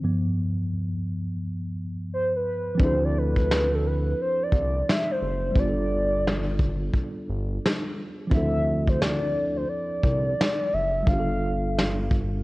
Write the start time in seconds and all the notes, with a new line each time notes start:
0.04 G2 F3 B3
2.13 C5
2.36 B4
2.75 F3 C4
2.80 D2 D4 E4 C5, kick
2.85 A4
3.05 D5
3.18 B4
3.36 kick
3.51 snare
3.74 A4
3.87 B4
4.21 C5
4.43 D5
4.52 C2, kick
4.89 E5, snare
5.11 C5
5.22 F#1
5.52 G3 B3
5.56 G1 D4 F4 D5, kick
5.62 G4
5.68 A4
6.27 snare
6.59 kick
6.93 kick
7.29 G1
7.65 snare
8.27 F3 C4
8.31 D2 D4 E4 E5, kick
8.37 A4
8.88 C5, kick
9.01 D5, snare
9.57 C5
9.69 D5
10.04 C2, kick
10.41 snare
10.74 F#1 E5
11.03 G3 B3
11.07 G1 D4 F4 F5, kick
11.13 G4
11.20 A4
11.78 snare
12.11 kick